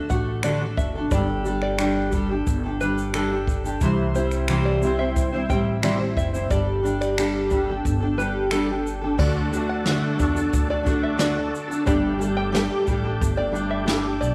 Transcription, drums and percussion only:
0.10 kick, shaker
0.43 finger snap, shaker
0.77 kick, shaker
1.11 kick, shaker
1.45 shaker
1.62 finger snap
1.79 finger snap, shaker
2.12 kick, shaker
2.47 kick, shaker
2.81 shaker
2.98 shaker
3.14 finger snap, shaker
3.48 kick, shaker
3.65 shaker
3.81 kick, shaker
4.15 shaker
4.31 finger snap, shaker
4.48 finger snap, shaker
4.82 shaker
5.16 kick, shaker
5.50 kick, shaker
5.83 finger snap, shaker
6.17 kick, shaker
6.34 shaker
6.51 kick, shaker
6.86 shaker
7.02 finger snap, shaker
7.18 finger snap, shaker
7.50 kick, shaker
7.85 kick, shaker
8.20 shaker
8.51 finger snap, shaker
8.87 shaker
9.19 kick, crash
9.53 shaker
9.86 snare, shaker
10.19 kick, shaker
10.36 shaker
10.53 kick, shaker
10.86 kick, shaker
11.19 snare, shaker
11.55 shaker
11.72 shaker
11.87 kick, shaker
12.21 shaker
12.55 snare, shaker
12.87 kick, shaker
13.21 kick, shaker
13.55 shaker
13.88 snare, shaker
14.23 shaker

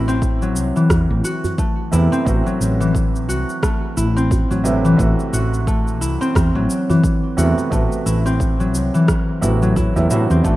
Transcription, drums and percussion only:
0.09 shaker
0.22 kick, shaker
0.42 shaker
0.56 djembe slap, shaker
0.76 shaker
0.90 kick, cross-stick, djembe bass, shaker
1.25 shaker
1.44 djembe bass, shaker
1.58 kick, shaker
1.93 shaker
2.13 djembe slap, djembe tone, shaker
2.27 kick, shaker
2.47 shaker
2.61 shaker
2.81 shaker
2.95 kick, shaker
3.16 shaker
3.30 djembe slap, shaker
3.49 shaker
3.63 kick, cross-stick, shaker
3.97 shaker
4.17 shaker
4.31 kick, djembe bass, shaker
4.51 djembe tone, shaker
4.65 djembe tone, shaker
4.85 djembe slap, shaker
4.99 kick, shaker
5.20 shaker
5.34 shaker
5.54 shaker
5.67 kick, shaker
5.88 shaker
6.02 djembe slap, shaker
6.22 shaker
6.35 kick, cross-stick, djembe bass, shaker
6.70 shaker
6.90 djembe bass, shaker
7.04 kick, shaker
7.38 shaker
7.58 djembe slap, djembe tone, shaker
7.72 kick, shaker
7.92 shaker
8.07 shaker
8.26 djembe tone, shaker
8.40 kick, shaker
8.60 shaker
8.75 djembe slap, shaker
8.95 shaker
9.08 kick, cross-stick, shaker
9.43 shaker
9.62 shaker
9.76 kick, djembe bass, shaker
9.96 djembe tone, shaker
10.10 djembe tone, shaker
10.30 djembe slap, shaker
10.45 kick, shaker

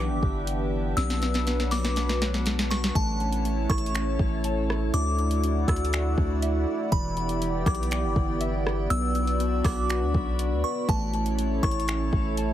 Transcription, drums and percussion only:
0.23 kick
0.47 closed hi-hat
0.97 snare, closed hi-hat
1.10 snare
1.22 snare, closed hi-hat
1.34 snare, closed hi-hat
1.47 snare, closed hi-hat
1.60 snare
1.71 snare, open hi-hat
1.85 snare
1.96 snare, closed hi-hat
2.09 snare
2.22 snare
2.34 snare
2.46 snare, closed hi-hat
2.59 snare
2.71 snare
2.84 snare
2.95 kick, closed hi-hat
3.20 closed hi-hat
3.33 closed hi-hat
3.45 closed hi-hat
3.70 kick, cross-stick, closed hi-hat
3.78 closed hi-hat
3.86 closed hi-hat
3.95 finger snap, closed hi-hat
4.19 kick
4.44 closed hi-hat
4.70 cross-stick
4.94 closed hi-hat
5.18 closed hi-hat
5.31 closed hi-hat
5.44 closed hi-hat
5.68 kick, cross-stick, closed hi-hat
5.76 closed hi-hat
5.85 closed hi-hat
5.93 finger snap, closed hi-hat
6.18 kick
6.42 closed hi-hat
6.92 kick, closed hi-hat
7.17 closed hi-hat
7.29 closed hi-hat
7.42 closed hi-hat
7.66 kick, cross-stick, closed hi-hat
7.75 closed hi-hat
7.83 closed hi-hat
7.91 finger snap, closed hi-hat
8.16 kick
8.41 closed hi-hat
8.67 cross-stick
8.90 closed hi-hat
9.15 closed hi-hat
9.27 closed hi-hat
9.40 closed hi-hat
9.64 kick, cross-stick, open hi-hat
9.90 finger snap, closed hi-hat
10.14 kick
10.39 closed hi-hat
10.89 kick, closed hi-hat
11.13 closed hi-hat
11.26 closed hi-hat
11.39 closed hi-hat
11.63 kick, cross-stick, closed hi-hat
11.71 closed hi-hat
11.80 closed hi-hat
11.88 finger snap, closed hi-hat
12.13 kick
12.37 closed hi-hat

